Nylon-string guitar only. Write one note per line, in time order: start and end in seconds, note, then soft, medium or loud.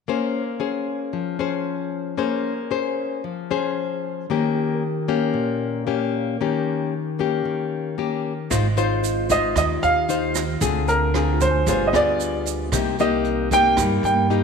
0.08 1.11 A#3 medium
0.08 0.42 C#4 medium
0.08 0.42 G#4 medium
0.08 0.43 C5 medium
0.60 1.35 C#4 medium
0.60 1.35 G#4 soft
0.60 1.36 C5 medium
1.13 2.16 F3 medium
1.39 2.14 C#4 medium
1.39 2.14 G#4 medium
1.39 2.15 C5 medium
2.17 3.21 A#3 medium
2.17 2.52 C#4 medium
2.17 2.53 G#4 soft
2.17 2.53 C5 medium
2.71 3.23 C#4 soft
2.71 3.24 G#4 soft
2.71 3.24 C5 medium
3.24 4.27 F3 medium
3.51 4.25 C#4 medium
3.51 4.26 G#4 medium
3.51 4.26 C5 medium
4.30 5.33 D#3 medium
4.30 4.82 A#3 medium
4.30 4.82 C#4 soft
4.30 4.83 G4 medium
5.08 5.83 A#3 medium
5.08 5.83 C#4 medium
5.08 5.84 G4 medium
5.34 6.37 A#2 medium
5.87 6.36 A#3 medium
5.87 6.36 C#4 medium
5.87 6.36 G4 medium
6.41 7.43 D#3 medium
6.41 6.93 A#3 medium
6.41 6.93 C#4 medium
6.41 6.93 G4 medium
7.19 7.94 A#3 medium
7.19 7.94 C#4 medium
7.19 7.95 G4 medium
7.45 8.48 D#3 medium
7.98 8.32 A#3 medium
7.98 8.32 C#4 medium
7.98 8.32 G4 medium
8.50 9.54 G#3 medium
8.50 8.67 D#4 medium
8.50 8.67 F4 medium
8.50 8.67 C5 medium
8.77 9.26 D#4 medium
8.77 9.26 F4 medium
8.77 9.26 C5 medium
9.30 10.05 D#4 medium
9.30 10.05 F4 medium
9.30 10.05 C5 medium
9.57 10.59 D#3 medium
10.09 10.43 D#4 soft
10.09 10.43 F4 medium
10.09 10.43 C5 medium
10.61 11.64 D3 medium
10.61 11.10 C4 medium
10.61 11.10 F4 medium
10.61 11.10 G#4 medium
11.14 11.50 C4 medium
11.14 11.50 F4 medium
11.14 11.51 G#4 medium
11.67 12.70 G3 medium
11.67 11.89 B3 medium
11.67 11.90 F4 soft
11.67 11.90 G#4 medium
11.93 12.70 B3 medium
11.93 12.70 F4 medium
11.93 12.71 G#4 medium
12.73 13.75 C3 medium
12.73 12.95 A#3 medium
12.73 12.95 D#4 medium
12.73 12.95 G4 medium
13.00 13.48 A#3 medium
13.00 13.48 D#4 medium
13.00 13.48 G4 medium
13.52 14.27 A#3 medium
13.52 14.27 D#4 medium
13.52 14.27 G4 medium
13.78 14.44 G3 medium
14.30 14.44 A#3 medium
14.30 14.44 D#4 soft
14.30 14.44 G4 medium